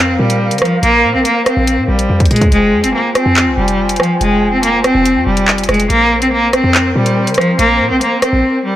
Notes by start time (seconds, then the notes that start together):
Already playing: F2 C4 A#4 C5 F5
0.20 A#2 G3
0.30 closed hi-hat
0.51 C#3, closed hi-hat
0.58 F3, cross-stick, closed hi-hat
0.65 closed hi-hat
0.83 A#1 A#3, closed hi-hat
1.04 A#2
1.14 A#1 C4
1.25 A#3, closed hi-hat
1.46 C4, cross-stick, closed hi-hat
1.57 A#1
1.67 closed hi-hat
1.78 A#2
1.89 A#1 G3
1.99 closed hi-hat
2.10 F2
2.20 kick, closed hi-hat
2.25 closed hi-hat
2.31 A#2 G#3, closed hi-hat
2.36 closed hi-hat
2.41 kick, closed hi-hat
2.52 F1 G#3 F4 G5 G#5, closed hi-hat
2.73 F2
2.84 F1 C4, closed hi-hat
2.94 A#3
3.15 C4, cross-stick, closed hi-hat
3.26 F2
3.36 clap
3.47 C2
3.58 F1 G3
3.68 closed hi-hat
3.89 closed hi-hat
3.96 F3, cross-stick, closed hi-hat
4.03 closed hi-hat
4.21 F1 G#3, closed hi-hat
4.53 C4
4.63 A#3, closed hi-hat
4.84 C4, cross-stick, closed hi-hat
4.95 F1
5.06 closed hi-hat
5.16 F2
5.26 F1 G3
5.37 closed hi-hat
5.48 clap
5.58 closed hi-hat
5.64 closed hi-hat
5.69 F1 G#3, cross-stick, closed hi-hat
5.74 closed hi-hat
5.80 closed hi-hat
5.90 A#1 A#3 C4 A#4 C5, closed hi-hat
6.22 C4, closed hi-hat
6.32 A#3
6.53 C4, cross-stick, closed hi-hat
6.64 F2
6.74 clap
6.96 A#2 G3
7.06 closed hi-hat
7.27 C#3, closed hi-hat
7.34 F3, cross-stick, closed hi-hat
7.41 closed hi-hat
7.59 A#1 A#3, closed hi-hat
7.80 A#2
7.90 A#1 C4
8.01 A#3, closed hi-hat
8.22 C4, cross-stick, closed hi-hat
8.33 A#1
8.65 G3